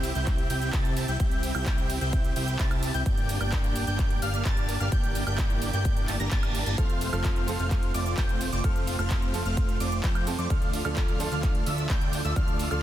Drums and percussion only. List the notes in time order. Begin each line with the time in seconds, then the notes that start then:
0.03 open hi-hat, ride, cabasa
0.15 closed hi-hat, cabasa
0.26 kick, clap, closed hi-hat, cabasa
0.38 closed hi-hat
0.50 open hi-hat, ride, cabasa
0.62 closed hi-hat, cabasa
0.73 kick, clap, closed hi-hat, cabasa
0.85 closed hi-hat, cabasa
0.97 open hi-hat, ride, cabasa
1.08 closed hi-hat, cabasa
1.20 kick, closed hi-hat, cabasa
1.31 closed hi-hat, cabasa
1.43 open hi-hat, ride, cabasa
1.55 closed hi-hat, cabasa, high woodblock
1.66 kick, clap, closed hi-hat, cabasa
1.78 closed hi-hat, cabasa
1.90 open hi-hat, ride, cabasa
2.01 closed hi-hat, cabasa
2.13 kick, closed hi-hat, cabasa
2.24 closed hi-hat, cabasa
2.36 open hi-hat, ride, cabasa
2.48 closed hi-hat, cabasa
2.59 kick, clap, closed hi-hat, cabasa
2.71 closed hi-hat, cabasa, high woodblock
2.83 open hi-hat, ride, cabasa
2.94 closed hi-hat, cabasa
3.06 kick, closed hi-hat, cabasa
3.17 closed hi-hat, cabasa
3.29 open hi-hat, ride, cabasa
3.41 closed hi-hat, cabasa, high woodblock
3.52 kick, clap, closed hi-hat, cabasa
3.64 closed hi-hat, cabasa
3.76 open hi-hat, ride, cabasa
3.87 closed hi-hat, cabasa
3.99 kick, clap, closed hi-hat, cabasa
4.10 closed hi-hat
4.22 open hi-hat, ride, cabasa
4.34 closed hi-hat, cabasa
4.45 kick, clap, closed hi-hat, cabasa
4.57 closed hi-hat, cabasa
4.69 open hi-hat, ride, cabasa
4.80 closed hi-hat, cabasa
4.92 kick, closed hi-hat, cabasa
5.04 closed hi-hat, cabasa
5.15 open hi-hat, ride, cabasa
5.27 closed hi-hat, cabasa, high woodblock
5.38 kick, clap, closed hi-hat, cabasa
5.50 closed hi-hat, cabasa
5.62 open hi-hat, ride, cabasa
5.73 closed hi-hat, cabasa
5.85 kick, closed hi-hat, cabasa
5.97 closed hi-hat, cabasa
6.08 clap, open hi-hat, ride, cabasa
6.20 closed hi-hat, cabasa
6.31 kick, clap, closed hi-hat, cabasa
6.43 closed hi-hat, cabasa, high woodblock
6.55 open hi-hat, ride, cabasa
6.66 closed hi-hat, cabasa
6.78 kick, closed hi-hat, cabasa
6.90 closed hi-hat, cabasa
7.01 open hi-hat, ride, cabasa
7.13 closed hi-hat, cabasa, high woodblock
7.24 kick, clap, closed hi-hat, cabasa
7.36 closed hi-hat, cabasa
7.48 open hi-hat, ride, cabasa
7.59 closed hi-hat, cabasa
7.71 kick, clap, closed hi-hat, cabasa
7.83 closed hi-hat
7.94 open hi-hat, ride, cabasa
8.06 closed hi-hat, cabasa
8.17 kick, clap, closed hi-hat, cabasa
8.29 closed hi-hat, cabasa
8.41 open hi-hat, ride, cabasa
8.52 closed hi-hat, cabasa
8.64 kick, closed hi-hat, cabasa
8.76 closed hi-hat, cabasa
8.87 open hi-hat, ride, cabasa
8.99 closed hi-hat, cabasa, high woodblock
9.10 kick, clap, closed hi-hat, cabasa
9.22 closed hi-hat, cabasa
9.34 open hi-hat, ride, cabasa
9.46 closed hi-hat, cabasa
9.57 kick, closed hi-hat, cabasa
9.69 closed hi-hat, cabasa
9.80 open hi-hat, ride, cabasa
9.92 closed hi-hat, cabasa
10.03 kick, clap, closed hi-hat, cabasa
10.15 closed hi-hat, cabasa, high woodblock
10.27 open hi-hat, ride, cabasa
10.39 closed hi-hat, cabasa
10.50 kick, closed hi-hat, cabasa
10.62 closed hi-hat, cabasa
10.73 open hi-hat, ride, cabasa
10.85 closed hi-hat, cabasa, high woodblock
10.96 kick, clap, closed hi-hat, cabasa
11.08 closed hi-hat, cabasa
11.20 open hi-hat, ride, cabasa
11.32 closed hi-hat, cabasa
11.43 kick, clap, closed hi-hat, cabasa
11.55 closed hi-hat
11.66 open hi-hat, ride, cabasa
11.78 closed hi-hat, cabasa
11.89 kick, clap, closed hi-hat, cabasa
12.01 closed hi-hat, cabasa
12.13 open hi-hat, ride, cabasa
12.25 closed hi-hat, cabasa
12.36 kick, closed hi-hat, cabasa
12.48 closed hi-hat, cabasa
12.59 open hi-hat, ride, cabasa
12.71 closed hi-hat, cabasa, high woodblock